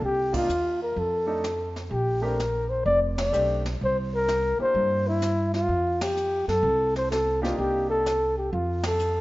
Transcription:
0.02 upright bass C2, flugelhorn G4, brush sweep
0.32 grand piano A#3 D4 D#4 F4, flugelhorn F4, kick, ride
0.49 upright bass D#2, hi-hat pedal
0.82 flugelhorn A#4
0.96 upright bass F2, flugelhorn A4, brush sweep
1.27 grand piano A3 D4 D#4 A4
1.44 snare, hi-hat pedal
1.76 snare
1.91 upright bass A#1, flugelhorn G4, brush sweep
2.21 grand piano A3 C4 D4 G4, flugelhorn A#4
2.40 snare, hi-hat pedal
2.70 flugelhorn C5
2.85 upright bass F1, flugelhorn D5, brush sweep
3.18 flugelhorn D5, snare, ride
3.32 upright bass B1, grand piano A3 C4 D4 G4, hi-hat pedal
3.66 snare
3.81 upright bass C2, flugelhorn C5, brush sweep
4.15 flugelhorn A#4
4.28 snare, hi-hat pedal
4.59 grand piano A#3 D4 E4 G4, flugelhorn C5, muted upright bass stroke
4.75 upright bass G2, brush sweep
5.08 flugelhorn E4
5.22 snare, hi-hat pedal
5.54 flugelhorn F4, snare
5.68 upright bass F2, brush sweep
6.01 flugelhorn G4, snare, ride
6.17 hi-hat pedal
6.48 upright bass F#2, flugelhorn A4, snare
6.63 upright bass C2, brush sweep
6.96 flugelhorn C5, snare
7.11 flugelhorn A4, snare, hi-hat pedal
7.42 grand piano A#3 D4 D#4 G4, flugelhorn F4, snare
7.58 upright bass C2, flugelhorn G4, brush sweep
7.90 flugelhorn A4
8.06 snare, hi-hat pedal
8.38 flugelhorn G4
8.53 upright bass F2, flugelhorn F4, brush sweep
8.83 flugelhorn A4, snare, ride
8.99 hi-hat pedal

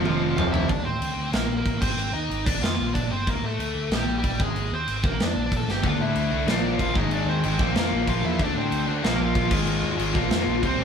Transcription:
0.05 picked electric bass F1, overdriven electric guitar F2 C3 F3, lead electric guitar F3 F4, mid tom
0.36 picked electric bass F1, overdriven electric guitar F2 C3 F3, lead electric guitar F4 F5, floor tom
0.52 picked electric bass F1, overdriven electric guitar F2 C3 F3, lead electric guitar E4 E5, floor tom
0.69 picked electric bass D2, lead electric guitar D4 D5, kick, crash
0.84 picked electric bass A2, lead electric guitar C4 C5
1.01 picked electric bass D2, crash
1.16 picked electric bass D2
1.32 picked electric bass A#1, lead electric guitar A#3 A#4, snare, crash
1.48 picked electric bass A#1
1.57 lead electric guitar A#3 A#4
1.65 picked electric bass A1, kick, crash
1.81 picked electric bass G#1, lead electric guitar C4 C5, kick, crash
1.97 picked electric bass G#1, crash
2.13 picked electric bass D#2, lead electric guitar D#4 D#5
2.30 picked electric bass G#1, crash
2.45 picked electric bass A#1, lead electric guitar D4 D5, kick, crash
2.62 picked electric bass F2, lead electric guitar F4 F5, snare, crash
2.79 picked electric bass A#1
2.94 picked electric bass A#1, lead electric guitar D4 D5, kick, crash
3.11 picked electric bass G1, lead electric guitar C4 C5
3.27 picked electric bass D2, lead electric guitar A#3 A#4, kick, crash
3.43 picked electric bass A2, lead electric guitar A3 A4
3.58 picked electric bass D2, crash
3.75 picked electric bass D2
3.90 picked electric bass A#1, snare, crash
3.94 lead electric guitar G3 G4
4.07 picked electric bass A#1
4.18 lead electric guitar G3 G4
4.24 picked electric bass A#1, kick, crash
4.40 picked electric bass G#1, lead electric guitar G#3 G#4, kick
4.56 picked electric bass G#1, crash
4.72 picked electric bass D#2, lead electric guitar C4 C5
4.88 picked electric bass G#1, crash
5.03 picked electric bass A#1, lead electric guitar A#4, kick
5.08 lead electric guitar A#3
5.20 picked electric bass F2, snare, crash
5.25 lead electric guitar D4 D5
5.36 picked electric bass A#1
5.52 picked electric bass A#1, kick, crash
5.56 lead electric guitar A4 A5
5.68 picked electric bass G1, lead electric guitar G4 G5, snare
5.83 picked electric bass D2, overdriven electric guitar D3 A3 D4, kick, crash
5.87 lead electric guitar F4 F5
5.99 picked electric bass A2, lead electric guitar E4 E5
6.15 picked electric bass D2, crash
6.31 picked electric bass C2, overdriven electric guitar D3 A3 D4
6.47 picked electric bass A#1, overdriven electric guitar A#2 F3 A#3, lead electric guitar D4 D5, snare, crash
6.63 picked electric bass A#1
6.78 picked electric bass A#1, lead electric guitar F4 F5, kick, crash
6.93 picked electric bass G#1, overdriven electric guitar G#2 D#3 G#3, lead electric guitar D#4 D#5, kick
7.09 picked electric bass G#1, lead electric guitar D4 D5, crash
7.26 picked electric bass D#2, lead electric guitar C4 C5
7.43 picked electric bass G#1, overdriven electric guitar G#2 D#3 G#3, crash
7.58 picked electric bass A#1, overdriven electric guitar A#2 F3 A#3, kick
7.75 picked electric bass F2, lead electric guitar A#3 A#4, snare, crash
7.91 picked electric bass A#1
8.06 picked electric bass A#1, overdriven electric guitar A#2 F3 A#3, lead electric guitar F4 F5, kick, crash
8.22 picked electric bass E2, distorted electric guitar A#2 F3 A#3, lead electric guitar E4 E5
8.39 picked electric bass D2, overdriven electric guitar D3 A3 D4, lead electric guitar D4, kick, crash
8.44 lead electric guitar D5
8.56 picked electric bass A2, lead electric guitar C4 C5
8.71 picked electric bass D2, crash
8.86 picked electric bass D2, overdriven electric guitar D3 A3 D4
9.01 picked electric bass A#1, overdriven electric guitar A#2 F3 A#3, lead electric guitar A#3, crash
9.05 lead electric guitar A#4, snare
9.20 picked electric bass A#1, lead electric guitar F4 F5
9.35 picked electric bass A#1, kick, crash
9.50 picked electric bass G#1, overdriven electric guitar G#2 D#3 G#3, kick, crash
9.66 picked electric bass G#1, crash
9.82 picked electric bass D#2
9.97 picked electric bass G#1, overdriven electric guitar G#2 D#3 G#3, crash
10.12 picked electric bass A#1, overdriven electric guitar A#2 F3 A#3, kick
10.30 picked electric bass F2, snare, crash
10.46 picked electric bass A#1
10.62 picked electric bass C2, overdriven electric guitar C3 G3 C4, lead electric guitar C5, kick, crash
10.67 lead electric guitar C4
10.77 picked electric bass A#1

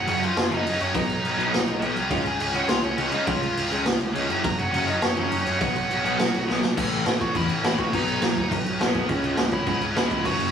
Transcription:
0.07 picked electric bass F#1, overdriven electric guitar F#2 C#3 F#3, lead electric guitar F#4 F#5, crash
0.23 lead electric guitar F4 F5, crash
0.37 picked electric bass F#1, snare, crash
0.50 picked electric bass F#1, overdriven electric guitar F#2 C#3 F#3, lead electric guitar D#4, crash
0.56 lead electric guitar D#5
0.65 picked electric bass F#1, crash
0.80 picked electric bass F#2, lead electric guitar C#4 C#5, crash
0.95 picked electric bass B1, overdriven electric guitar B2 F#3 B3, lead electric guitar D#4 D#5, kick, crash
1.09 picked electric bass B1, crash
1.24 picked electric bass B1, crash
1.37 picked electric bass B1, overdriven electric guitar B2 F#3 B3, crash
1.53 picked electric bass B1, snare, crash
1.68 picked electric bass B1, crash
1.80 picked electric bass B1, overdriven electric guitar B2 F#3 B3, crash
1.96 picked electric bass C2, crash
2.10 picked electric bass C#2, overdriven electric guitar C#3 G#3 C#4, lead electric guitar F4 F5, kick, crash
2.25 picked electric bass C#2, lead electric guitar G#4 G#5, crash
2.39 picked electric bass C#2, lead electric guitar G#4 G#5, crash
2.54 overdriven electric guitar C#3 G#3 C#4, lead electric guitar F#4 F#5, crash
2.68 picked electric bass C#2, lead electric guitar F4 F5, snare, crash
2.82 picked electric bass C#2, lead electric guitar C#4 C#5, crash
2.97 picked electric bass C#2, overdriven electric guitar C#3 G#3 C#4, crash
3.12 picked electric bass C#3, lead electric guitar D#4 D#5, crash
3.26 picked electric bass C#2, overdriven electric guitar C#3 G#3 C#4, lead electric guitar F4 F5, kick, crash
3.42 picked electric bass C#2, crash
3.56 picked electric bass C#2, crash
3.71 picked electric bass C#2, overdriven electric guitar C#3 G#3 C#4, crash
3.85 picked electric bass C#2, snare, crash
4.00 picked electric bass C#2, crash
4.14 picked electric bass C#2, overdriven electric guitar C#3 G#3 C#4, crash
4.28 picked electric bass F#1, overdriven electric guitar F#2 C#3 F#3, crash
4.44 picked electric bass F#1, lead electric guitar A#4 A#5, kick, crash
4.59 picked electric bass F#1, lead electric guitar F#4 F#5, crash
4.72 picked electric bass F#1, overdriven electric guitar F#2 C#3 F#3, lead electric guitar F#4 F#5, crash
4.86 lead electric guitar D#4 D#5, crash
5.02 picked electric bass F#1, lead electric guitar C#4 C#5, snare, crash
5.17 picked electric bass F#1, overdriven electric guitar F#2 C#3 F#3, crash
5.32 picked electric bass F#1, crash
5.45 picked electric bass F#2, lead electric guitar C#4 C#5, crash
5.59 picked electric bass B1, overdriven electric guitar B2 F#3 B3, lead electric guitar F#4 F#5, kick, crash
5.76 picked electric bass B1, crash
5.90 picked electric bass B1, crash
6.04 picked electric bass B1, overdriven electric guitar B2 F#3 B3, crash
6.19 picked electric bass B1, snare, crash
6.34 picked electric bass B1, crash
6.48 picked electric bass B1, overdriven electric guitar B2 F#3 B3, snare
6.62 picked electric bass B2, snare
6.77 picked electric bass A1, overdriven electric guitar A2 E3 A3, kick, crash
6.92 picked electric bass A1, crash
7.06 picked electric bass A1, overdriven electric guitar A2 E3, snare, crash
7.21 picked electric bass A1, lead electric guitar F#4, kick, crash
7.35 picked electric bass E2, overdriven electric guitar A2 E3, lead electric guitar E4, kick, crash
7.49 picked electric bass A1, crash
7.64 picked electric bass A1, overdriven electric guitar A2 E3 A3, lead electric guitar E4, snare, crash
7.78 picked electric bass A1, lead electric guitar F#4, kick, crash
7.93 picked electric bass B1, overdriven electric guitar B2 F#3 B3, lead electric guitar D#4, kick, crash
8.08 picked electric bass B1, crash
8.22 picked electric bass B1, overdriven electric guitar B2 F#3, snare, crash
8.37 picked electric bass D#2, kick, crash
8.51 picked electric bass B1, overdriven electric guitar B2 F#3, kick, crash
8.66 picked electric bass B1, crash
8.80 picked electric bass B1, overdriven electric guitar B2 F#3 B3, snare, crash
8.95 picked electric bass B1, kick, crash
9.07 picked electric bass C#2, overdriven electric guitar C#3 G#3 C#4, kick, crash
9.22 picked electric bass C#2, crash
9.37 picked electric bass C#2, overdriven electric guitar C#3 G#3, snare, crash
9.52 picked electric bass C#2, lead electric guitar E4, kick, crash
9.67 picked electric bass G#2, overdriven electric guitar C#3 G#3, lead electric guitar E4, kick, crash
9.81 picked electric bass C#2, crash
9.95 picked electric bass C#2, overdriven electric guitar C#3 G#3 C#4, lead electric guitar E4, snare, crash
10.11 picked electric bass C#2, lead electric guitar E4, kick, crash
10.25 picked electric bass F#1, overdriven electric guitar F#2 C#3 F#3, lead electric guitar F#4, kick, crash
10.39 picked electric bass F#1, crash

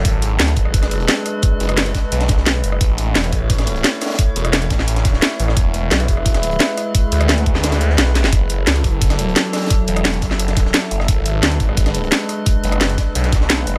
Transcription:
0.05 detuned saw bass G#1, synth drone G#3 D4 B4, kick, closed hi-hat
0.22 closed hi-hat
0.39 detuned saw bass D2, snare, closed hi-hat
0.48 closed hi-hat
0.56 detuned saw bass G#1, kick, closed hi-hat, open hi-hat
0.65 cross-stick
0.74 kick, closed hi-hat
0.83 cross-stick, snare, closed hi-hat
0.91 closed hi-hat
1.00 closed hi-hat
1.08 snare, closed hi-hat
1.26 cross-stick, closed hi-hat, open hi-hat
1.42 kick, closed hi-hat
1.60 detuned saw bass F#1, closed hi-hat
1.69 cross-stick, closed hi-hat
1.77 snare, closed hi-hat
1.86 closed hi-hat
1.94 kick, snare, closed hi-hat, open hi-hat
2.12 detuned saw bass B1, closed hi-hat
2.21 snare, closed hi-hat
2.28 kick, snare, closed hi-hat
2.37 snare
2.46 snare, closed hi-hat
2.64 detuned saw bass F#1, closed hi-hat, open hi-hat
2.72 cross-stick
2.81 detuned saw bass A1, synth drone A3 E4 C#5, kick, closed hi-hat
2.98 closed hi-hat
3.15 detuned saw bass E1, snare, closed hi-hat
3.24 closed hi-hat
3.32 detuned saw bass A1, kick, closed hi-hat, open hi-hat
3.50 kick, closed hi-hat
3.58 cross-stick, snare, closed hi-hat
3.67 closed hi-hat
3.76 closed hi-hat
3.84 snare, closed hi-hat
3.93 closed hi-hat
4.01 cross-stick, snare, closed hi-hat, open hi-hat
4.06 snare, closed hi-hat
4.10 snare, closed hi-hat
4.14 snare, closed hi-hat
4.19 kick, closed hi-hat
4.36 detuned saw bass E1, closed hi-hat
4.45 cross-stick, closed hi-hat
4.53 snare, closed hi-hat
4.62 closed hi-hat
4.70 detuned saw bass A1, kick, snare, closed hi-hat, open hi-hat
4.79 cross-stick, snare
4.88 closed hi-hat
4.96 snare, closed hi-hat
5.05 kick, snare, closed hi-hat
5.13 snare
5.22 snare, closed hi-hat
5.31 snare
5.39 detuned saw bass A1, closed hi-hat, open hi-hat
5.48 cross-stick, snare
5.57 detuned saw bass E1, synth drone G#3 B4, kick, closed hi-hat
5.74 closed hi-hat
5.91 detuned saw bass B1, snare, closed hi-hat
6.00 closed hi-hat
6.08 detuned saw bass E1, kick, closed hi-hat, open hi-hat
6.17 cross-stick
6.26 kick, closed hi-hat
6.34 cross-stick, snare, closed hi-hat
6.43 closed hi-hat
6.51 closed hi-hat
6.59 snare, closed hi-hat
6.69 closed hi-hat
6.77 cross-stick, closed hi-hat, open hi-hat
6.95 kick, closed hi-hat
7.12 detuned saw bass D2, closed hi-hat
7.21 cross-stick, closed hi-hat
7.29 snare, closed hi-hat
7.38 closed hi-hat
7.46 detuned saw bass D2, kick, open hi-hat
7.55 cross-stick, snare
7.63 snare, closed hi-hat
7.72 snare, closed hi-hat
7.81 snare, closed hi-hat
7.90 snare
7.98 detuned saw bass B1, snare, closed hi-hat
8.07 snare
8.15 snare, closed hi-hat, open hi-hat
8.24 snare
8.33 detuned saw bass F#1, synth drone F#3 A4, kick, closed hi-hat
8.49 closed hi-hat
8.67 detuned saw bass C#2, snare, closed hi-hat
8.76 closed hi-hat
8.84 detuned saw bass F#1, kick, closed hi-hat, open hi-hat
9.01 kick, closed hi-hat
9.10 cross-stick, snare, closed hi-hat
9.19 closed hi-hat
9.29 closed hi-hat
9.36 snare, closed hi-hat
9.45 closed hi-hat
9.53 cross-stick, snare, closed hi-hat, open hi-hat
9.57 snare, closed hi-hat
9.62 snare, closed hi-hat
9.66 snare, closed hi-hat
9.70 kick, closed hi-hat
9.87 detuned saw bass E1, closed hi-hat
9.96 cross-stick, closed hi-hat
10.04 snare, closed hi-hat
10.13 closed hi-hat
10.22 detuned saw bass F#1, kick, snare, closed hi-hat, open hi-hat
10.31 cross-stick, snare
10.39 closed hi-hat
10.48 snare, closed hi-hat
10.57 kick, snare, closed hi-hat
10.65 snare
10.74 snare, closed hi-hat
10.83 snare
10.91 detuned saw bass F#1, closed hi-hat, open hi-hat
11.00 cross-stick, snare
11.08 detuned saw bass G#1, synth drone G#3 D4 B4, kick, closed hi-hat
11.25 closed hi-hat
11.43 detuned saw bass D2, snare, closed hi-hat
11.52 closed hi-hat
11.60 detuned saw bass G#1, kick, closed hi-hat, open hi-hat
11.69 cross-stick
11.77 kick, closed hi-hat
11.86 cross-stick, snare, closed hi-hat
11.94 closed hi-hat
12.04 closed hi-hat
12.11 snare, closed hi-hat
12.21 closed hi-hat
12.29 cross-stick, closed hi-hat, open hi-hat
12.46 kick, closed hi-hat
12.64 detuned saw bass F#1, closed hi-hat
12.72 cross-stick, closed hi-hat
12.80 snare, closed hi-hat
12.89 closed hi-hat
12.98 kick, snare, closed hi-hat, open hi-hat
13.15 detuned saw bass B1, closed hi-hat
13.24 snare, closed hi-hat
13.32 kick, snare, closed hi-hat
13.41 snare
13.49 snare, closed hi-hat
13.67 detuned saw bass F#1, closed hi-hat, open hi-hat

